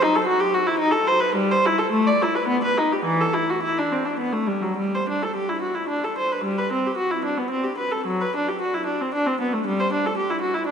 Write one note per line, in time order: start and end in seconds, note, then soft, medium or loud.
0.02 0.14 D#4 medium
0.16 0.27 A4 medium
0.27 0.39 F#4 medium
0.40 0.52 G4 medium
0.54 0.66 F#4 medium
0.67 0.79 E4 medium
0.79 0.92 D#4 medium
0.91 1.05 A4 medium
1.07 1.21 C5 medium
1.20 1.34 B4 medium
1.35 1.49 G3 medium
1.51 1.64 C5 medium
1.66 1.78 E4 medium
1.78 1.91 A4 medium
1.92 2.05 A3 medium
2.07 2.20 D5 medium
2.22 2.34 E4 medium
2.35 2.48 B4 medium
2.48 2.61 B3 medium
2.64 2.77 B4 medium
2.78 2.90 D#4 medium
2.92 3.05 G4 medium
3.05 3.18 E3 medium
3.21 3.34 A4 medium
3.34 3.48 E4 medium
3.50 3.63 F#4 medium
3.63 3.77 E4 medium
3.78 3.92 D4 medium
3.92 4.06 C4 soft
4.05 4.19 D4 soft
4.19 4.34 B3 medium
4.33 4.48 A3 medium
4.47 4.63 G3 soft
4.62 4.78 F#3 soft
4.78 4.93 G3 medium
4.95 5.08 C5 medium
5.09 5.22 D4 soft
5.22 5.36 A4 soft
5.36 5.49 G4 medium
5.49 5.63 E4 soft
5.62 5.76 F#4 soft
5.75 5.89 E4 soft
5.89 6.03 D4 medium
6.04 6.17 A4 soft
6.18 6.31 C5 soft
6.32 6.45 B4 soft
6.44 6.57 G3 medium
6.58 6.71 B4 medium
6.72 6.85 C4 soft
6.86 6.99 G4 soft
6.97 7.10 F#4 medium
7.11 7.24 E4 soft
7.25 7.37 D4 soft
7.37 7.51 B3 soft
7.51 7.64 C4 soft
7.63 7.77 G4 soft
7.78 7.91 B4 soft
7.91 8.06 A4 soft
8.06 8.20 F#3 medium
8.21 8.34 B4 medium
8.36 8.48 D4 medium
8.48 8.61 G4 soft
8.61 8.73 F#4 medium
8.74 8.87 E4 medium
8.86 8.99 D4 soft
9.01 9.13 C4 soft
9.14 9.26 D4 medium
9.27 9.39 C4 medium
9.40 9.52 B3 soft
9.53 9.65 A3 soft
9.66 9.78 G3 medium
9.80 9.91 C5 medium
9.93 10.04 D4 medium
10.06 10.17 A4 medium
10.17 10.29 G4 medium
10.30 10.42 E4 medium
10.41 10.53 F#4 soft
10.54 10.67 E4 medium
10.67 10.71 D4 medium